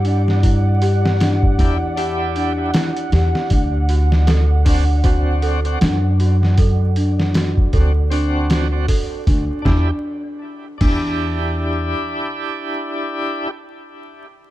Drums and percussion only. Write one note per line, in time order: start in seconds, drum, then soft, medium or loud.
0.05 open hi-hat medium
0.28 snare soft
0.43 kick medium
0.43 open hi-hat medium
0.82 open hi-hat medium
1.06 snare medium
1.20 snare medium
1.20 open hi-hat medium
1.43 kick medium
1.59 kick medium
1.59 open hi-hat medium
1.97 open hi-hat medium
2.36 open hi-hat medium
2.74 snare loud
2.74 open hi-hat medium
2.97 closed hi-hat soft
3.12 snare medium
3.12 open hi-hat medium
3.35 snare soft
3.50 kick loud
3.50 open hi-hat medium
3.89 open hi-hat medium
4.12 snare soft
4.27 snare medium
4.27 open hi-hat medium
4.66 kick medium
4.66 open hi-hat medium
5.04 kick loud
5.04 open hi-hat medium
5.42 open hi-hat medium
5.65 closed hi-hat soft
5.81 snare medium
5.81 open hi-hat medium
6.20 open hi-hat medium
6.43 snare soft
6.58 kick medium
6.58 open hi-hat medium
6.96 open hi-hat medium
7.19 snare medium
7.34 snare medium
7.34 open hi-hat medium
7.57 kick medium
7.73 kick medium
7.73 open hi-hat medium
8.12 open hi-hat medium
8.50 snare medium
8.50 open hi-hat medium
8.88 kick medium
8.88 open hi-hat medium
9.27 kick medium
9.27 open hi-hat medium
9.65 kick loud
9.65 snare medium
10.81 kick loud
10.81 crash medium